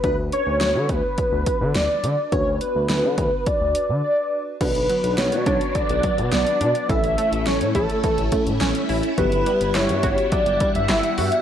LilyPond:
<<
  \new Staff \with { instrumentName = "Analog synth lead" } { \time 4/4 \key b \minor \tempo 4 = 105 b'8 cis''4 b'4. d''4 | cis''8 b'8 b'4 d''4 d''8. r16 | b'4 cis''4 d''4 d''4 | e''4 cis''8 a'4. r4 |
b'4 cis''4 d''8. e''8. e''8 | }
  \new Staff \with { instrumentName = "FM electric piano" } { \time 4/4 \key b \minor <d' fis' b'>1 | <d' fis' b'>1 | <d' fis' b'>1 | <cis' e' a'>2~ <cis' e' a'>8 <cis' e' a'>4. |
<b e' g'>1 | }
  \new Staff \with { instrumentName = "String machine" } { \time 4/4 \key b \minor r1 | r1 | <fis b d'>1 | <a cis' e'>1 |
<g fis''>1 | }
  \new Staff \with { instrumentName = "Synth pluck" } { \time 4/4 \key b \minor r1 | r1 | d8 fis8 b8 d'8 d8 fis8 b8 d'8 | e8 a8 cis'8 e'8 e8 a8 cis'8 e'8 |
fis8 g8 e'8 fis'8 fis8 g8 e'8 fis'8 | }
  \new Staff \with { instrumentName = "Analog synth bass" } { \clef bass \time 4/4 \key b \minor d,16 d,16 r16 d,16 d,16 d16 d,16 r8 d,16 r16 d16 d,16 r16 d16 r16 | d,16 d,16 r16 d,16 d,16 d16 d,16 r8 d,16 r16 d16 r4 | b,,16 b,,16 r16 b,,16 b,,16 b,16 b,,16 r8 b,,16 r16 b,16 b,,16 r16 b,16 r16 | a,,16 a,,16 r16 a,,16 a,,16 a,16 a,,16 r8 a,,16 r16 a,16 a,,16 r16 a,,16 r16 |
g,,16 g,,16 r16 g,,16 g,,16 g,16 g,,16 r8 g,,16 r16 g,16 g,,16 r16 g,16 r16 | }
  \new DrumStaff \with { instrumentName = "Drums" } \drummode { \time 4/4 <hh bd>8 hh8 <hh sn>8 <hh bd>8 <hh bd>8 <hh bd>8 <hh sn>8 hh8 | <hh bd>8 hh8 <hh sn>8 <hh bd>8 <hh bd>8 hh8 r4 | <cymc hh bd>16 hh16 hh16 hh16 <hh sn>16 hh16 <hh bd>16 hh16 <hh bd>16 hh16 <hh bd>16 hh16 <hh sn>16 hh16 hh16 hh16 | <hh bd>16 hh16 hh16 hh16 <hh sn>16 hh16 <hh bd>16 hh16 <hh bd>16 hh16 <hh bd>16 hh16 <hh sn>16 hh16 hho16 hh16 |
<hh bd>16 hh16 hh16 hh16 <hc hh sn>16 hh16 <hh bd>16 hh16 <hh bd>16 hh16 <hh bd>16 hh16 <hc hh sn>16 hh16 hho16 hh16 | }
>>